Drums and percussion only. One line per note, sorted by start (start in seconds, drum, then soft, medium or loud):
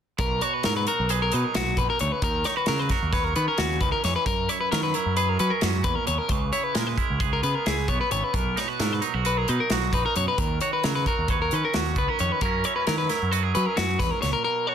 0.18 kick medium
0.18 closed hi-hat medium
0.41 closed hi-hat soft
0.63 snare medium
0.63 closed hi-hat medium
0.87 closed hi-hat medium
1.09 closed hi-hat medium
1.32 closed hi-hat medium
1.55 snare medium
1.55 closed hi-hat medium
1.77 kick medium
1.77 closed hi-hat medium
1.99 closed hi-hat medium
2.22 kick medium
2.22 closed hi-hat medium
2.44 snare soft
2.44 closed hi-hat soft
2.66 snare loud
2.66 closed hi-hat medium
2.89 kick medium
2.89 snare soft
2.89 closed hi-hat soft
3.13 kick medium
3.13 snare soft
3.13 closed hi-hat medium
3.36 closed hi-hat medium
3.58 snare medium
3.58 closed hi-hat medium
3.81 kick medium
3.81 closed hi-hat soft
4.04 snare soft
4.04 closed hi-hat soft
4.26 kick medium
4.26 closed hi-hat medium
4.49 closed hi-hat soft
4.72 snare medium
4.72 closed hi-hat medium
4.94 closed hi-hat medium
5.17 closed hi-hat medium
5.39 closed hi-hat medium
5.61 snare medium
5.61 closed hi-hat medium
5.84 kick medium
5.84 closed hi-hat medium
6.07 closed hi-hat medium
6.29 kick medium
6.29 closed hi-hat medium
6.53 closed hi-hat soft
6.75 snare medium
6.75 closed hi-hat medium
6.98 kick medium
6.98 closed hi-hat soft
7.20 kick medium
7.20 closed hi-hat medium
7.43 closed hi-hat medium
7.66 snare loud
7.66 closed hi-hat medium
7.88 kick medium
7.88 closed hi-hat soft
8.11 closed hi-hat soft
8.34 kick medium
8.34 closed hi-hat medium
8.57 snare soft
8.57 closed hi-hat medium
8.80 snare medium
8.80 closed hi-hat medium
9.02 closed hi-hat medium
9.25 closed hi-hat medium
9.48 closed hi-hat medium
9.70 snare medium
9.70 closed hi-hat medium
9.93 kick medium
9.93 closed hi-hat medium
10.16 closed hi-hat medium
10.38 kick medium
10.38 closed hi-hat medium
10.61 closed hi-hat soft
10.84 snare loud
10.84 closed hi-hat medium
11.06 kick medium
11.06 closed hi-hat soft
11.28 kick medium
11.28 closed hi-hat medium
11.51 closed hi-hat medium
11.74 snare loud
11.74 closed hi-hat medium
11.96 kick medium
11.96 closed hi-hat soft
12.19 closed hi-hat medium
12.41 kick medium
12.41 closed hi-hat medium
12.64 closed hi-hat soft
12.87 snare medium
12.87 closed hi-hat medium
13.09 snare soft
13.09 closed hi-hat medium
13.33 closed hi-hat medium
13.55 closed hi-hat medium
13.77 snare medium
13.77 closed hi-hat medium
14.00 kick medium
14.00 snare soft
14.00 closed hi-hat medium
14.22 snare soft
14.22 closed hi-hat medium